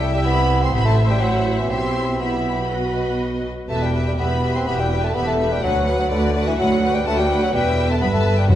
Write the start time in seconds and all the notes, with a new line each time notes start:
Already playing: C2 G3 E4 G4 E5 G5
0.15 G3 G5
0.25 B3 B5
0.62 C4 C6
0.73 A1 A2 B3 E4 C5 E5 B5
0.85 A3 A5
1.10 G3 G5
1.21 F#3 F#5
1.59 E3 E5
1.70 B1 B2 C4 E4 G4 E5 C6
2.20 B3 E4 G4 E5 B5
2.70 F#4 B4 D#5
3.69 E1 E2 A3 G4 B4 E5 A5
3.82 G3 G5
3.93 G4 B4 E5
4.06 G3 G5
4.17 E1 E2 B3 G4 B4 E5 B5
4.41 G4 B4 E5
4.54 C4 C6
4.65 E1 E2 B3 G4 B4 E5 B5
4.77 G3 G5
4.90 G4 B4 E5
5.02 A3 A5
5.14 E1 E2 B3 G4 B4 E5 B5
5.27 A3 A5
5.38 G4 B4 E5
5.51 G3 G5
5.62 D2 F#3 F#4 B4 F#5
5.85 F#4 B4 F#5
5.99 F#3 F#5
6.10 D2 D3 F#4 B4 D5 F#5
6.35 F#4 B4 F#5
6.46 E3 E5
6.58 D2 F#3 F#4 B4 F#5
6.82 F#4 B4 F#5
6.94 G3 G5
7.05 D2 A3 F#4 B4 F#5 A5
7.18 G3 G5
7.30 F#4 B4 F#5
7.42 F#3 F#5
7.53 E1 E2 G3 B4 E5 G5
7.90 A3 A5
8.01 G1 G2 B3 B4 E5 B5
8.13 A3 A5
8.38 G3 G5
8.48 F#1 F#2 F#3 F#4 A#4 E5 F#5